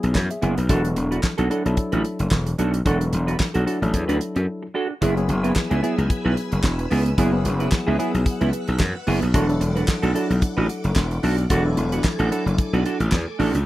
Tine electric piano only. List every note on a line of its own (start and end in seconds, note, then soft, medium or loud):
0.00 0.33 F#3 medium
0.00 0.33 B3 medium
0.00 0.15 E4 medium
0.00 0.16 G#4 loud
0.15 0.30 E4 medium
0.15 0.30 C#5 medium
0.31 0.42 G#4 medium
0.31 0.42 E5 medium
0.42 0.57 F#5 medium
0.58 0.83 B4 medium
0.69 1.33 F#3 medium
0.69 1.33 D4 medium
0.69 1.34 E4 medium
0.69 1.34 A4 medium
1.50 1.62 F#3 medium
1.50 1.62 D4 medium
1.50 1.62 E4 medium
1.50 1.62 A4 medium
1.65 2.49 F#3 medium
1.65 2.49 D4 medium
1.65 2.50 E4 medium
1.65 2.50 A4 medium
2.85 3.50 F#3 medium
2.85 3.50 D4 medium
2.85 3.50 E4 medium
2.85 3.50 A4 medium
3.66 3.78 F#3 medium
3.66 3.78 D4 medium
3.66 3.79 E4 medium
3.66 3.79 A4 medium
3.82 4.66 F#3 medium
3.82 4.66 D4 medium
3.82 4.66 E4 medium
3.82 4.66 A4 loud
5.02 5.13 F#3 medium
5.02 5.14 B3 medium
5.02 5.14 E4 medium
5.02 5.14 G#4 medium
5.17 5.69 F#3 medium
5.17 5.69 B3 medium
5.17 5.70 E4 medium
5.17 5.70 G#4 medium
5.83 6.67 F#3 medium
5.83 6.67 B3 medium
5.83 6.68 E4 medium
5.83 6.68 G#4 medium
7.17 7.29 F#3 medium
7.17 7.30 B3 medium
7.17 7.30 E4 medium
7.17 7.30 G#4 loud
7.33 7.85 F#3 medium
7.33 7.85 B3 medium
7.33 7.85 E4 medium
7.33 7.86 G#4 medium
7.99 8.83 F#3 medium
7.99 8.83 B3 medium
7.99 8.84 E4 medium
7.99 8.84 G#4 loud
9.34 9.46 F#3 medium
9.34 9.46 D4 medium
9.34 9.46 E4 medium
9.34 9.46 A4 medium
9.49 10.01 F#3 medium
9.49 10.02 D4 medium
9.49 10.02 E4 medium
9.49 10.02 A4 medium
10.15 11.00 F#3 medium
10.15 11.00 D4 medium
10.15 11.00 E4 medium
10.15 11.00 A4 medium
11.50 11.62 F#3 medium
11.50 11.62 D4 medium
11.50 11.62 E4 medium
11.50 11.62 A4 medium
11.65 12.18 F#3 medium
11.65 12.18 D4 medium
11.65 12.18 E4 medium
11.65 12.18 A4 medium
12.31 13.16 F#3 medium
12.31 13.16 D4 medium
12.31 13.16 E4 medium
12.31 13.16 A4 medium